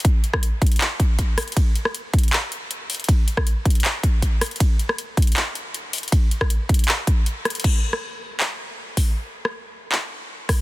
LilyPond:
\new DrumStaff \with { instrumentName = "Drums" } \drummode { \time 4/4 \tempo 4 = 158 <hh bd>8 hh16 <bd ss>16 hh8 <hh bd>32 hh32 hh32 hh32 <hc hh>8 <hh bd>8 <hh bd>8 <hho ss>32 hh32 hh32 hh32 | <hh bd cymr>8 hh16 ss16 hh8 <hh bd>32 hh32 hh32 hh32 <hc hh>8 hh8 hh8 hho32 hh32 hh32 hh32 | <hh bd cymr>8 hh16 <bd ss>16 hh8 <hh bd>32 hh32 hh32 hh32 <hc hh>8 <hh bd>8 <hh bd>8 <hho ss>32 hh32 hh32 hh32 | <hh bd cymr>8 hh16 ss16 hh8 <hh bd>32 hh32 hh32 hh32 <hc hh>8 hh8 hh8 hho32 hh32 hh32 hh32 |
<hh bd cymr>8 hh16 <bd ss>16 hh8 <hh bd>32 hh32 hh32 hh32 <hc hh>8 <hh bd>8 hh8 <hh ss>32 hh32 hh32 hh32 | <cymc bd>8. ss16 r4 hc4 r8 <hho bd>8 | r8. ss16 r4 hc4 r8 <hho bd ss>8 | }